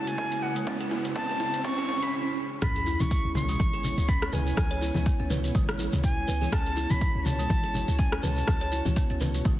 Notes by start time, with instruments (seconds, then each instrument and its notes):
Already playing: ambient pad C#3 F#4 C#5, riser
0.07 flute G#5, closed hi-hat
0.18 kick, mid tom
0.32 closed hi-hat
0.42 flute F#5, mid tom
0.56 kalimba G#3, closed hi-hat
0.67 kalimba C#4, ambient pad E4, kick, mid tom
0.81 kalimba G#4, closed hi-hat, mid tom
0.91 kalimba E4, mid tom
1.05 closed hi-hat, mid tom
1.16 kalimba C#4, flute A5, kick, mid tom
1.29 kalimba G#4, closed hi-hat, mid tom
1.40 kalimba E4, mid tom
1.54 closed hi-hat, mid tom
1.64 kalimba C#4, flute C#6, kick, mid tom
1.78 kalimba G#4, closed hi-hat, mid tom
1.89 kalimba C#4, mid tom
2.02 kalimba G#4, flute B5, closed hi-hat, mid tom
2.62 808-style bass C#2, ambient pad B3 E4 C#5, kalimba C#4, flute B5, kick, cross-stick, closed hi-hat, sub drop, muted conga, high conga, shekere
2.76 kalimba G#4, closed hi-hat
2.86 kalimba E4, muted conga, shekere
3.00 808-style bass C#2, flute C#6, high conga, low conga, shekere
3.11 kick, closed hi-hat, muted conga, shekere
3.25 808-style bass C#2
3.35 flute C#6, mid tom, high conga, low conga, shekere
3.49 kalimba G#3, closed hi-hat, muted conga, shekere
3.59 808-style bass G#1, kick, closed hi-hat, high conga, low conga, shekere
3.73 kalimba G#4, closed hi-hat, muted conga
3.84 high conga, low conga, shekere
3.98 808-style bass C#2, closed hi-hat, muted conga, shekere
4.08 kalimba C#4, flute B5, kick, closed hi-hat, shekere
4.22 kalimba C#4, cross-stick
4.32 808-style bass C#2, kalimba B4, flute G#5, mid tom, muted conga, high conga, shekere
4.47 shekere
4.57 808-style bass C#2, kick, cross-stick, closed hi-hat, muted conga, high conga, shekere
4.71 kalimba C#5, closed hi-hat
4.81 kalimba E4, muted conga, shekere
4.95 808-style bass C#2, high conga, low conga, shekere
5.06 kalimba B3, kick, closed hi-hat, muted conga, shekere
5.20 808-style bass C#2, kalimba C#4
5.30 kalimba B4, mid tom, low conga, shekere
5.44 closed hi-hat, muted conga, shekere
5.55 808-style bass G#1, kalimba G#3, kick, closed hi-hat, mid tom, shekere
5.69 cross-stick, closed hi-hat, muted conga
5.79 kalimba E4, high conga, shekere
5.92 808-style bass C#2, closed hi-hat, mid tom, muted conga, shekere
6.03 flute G#5, kick, closed hi-hat, shekere
6.28 808-style bass C#2, kalimba B4, muted conga, shekere
6.42 kalimba G#4, high conga, shekere
6.52 808-style bass C#2, kalimba C#4, ambient pad F#4, flute A5, kick, cross-stick, closed hi-hat, muted conga, high conga, shekere
6.66 kalimba G#4, closed hi-hat
6.77 kalimba E4, muted conga, shekere
6.90 808-style bass C#2, flute B5, high conga, low conga, shekere
7.01 kick, closed hi-hat, muted conga, shekere
7.15 808-style bass C#2
7.19 flute B5
7.25 flute A5, mid tom, high conga, low conga, shekere
7.39 kalimba G#3, closed hi-hat, muted conga, shekere
7.50 808-style bass G#1, kick, closed hi-hat, high conga, low conga, shekere
7.63 kalimba G#4, closed hi-hat, muted conga
7.74 high conga, low conga, shekere
7.88 808-style bass C#2, closed hi-hat, muted conga, shekere
7.99 kalimba C#4, flute G#5, kick, closed hi-hat, shekere
8.12 kalimba C#4, cross-stick
8.23 808-style bass C#2, kalimba B4, flute A5, mid tom, muted conga, high conga, shekere
8.37 shekere
8.47 808-style bass C#2, kick, cross-stick, closed hi-hat, muted conga, high conga, shekere
8.61 kalimba C#5, closed hi-hat
8.72 kalimba E4, muted conga, shekere
8.85 808-style bass C#2, high conga, low conga, shekere
8.96 kalimba B3, kick, closed hi-hat, muted conga, shekere
9.10 808-style bass C#2, kalimba C#4, closed hi-hat
9.21 kalimba B4, mid tom, low conga, shekere
9.34 closed hi-hat, muted conga, shekere
9.45 808-style bass G#1, kalimba G#3, kick, closed hi-hat, mid tom, shekere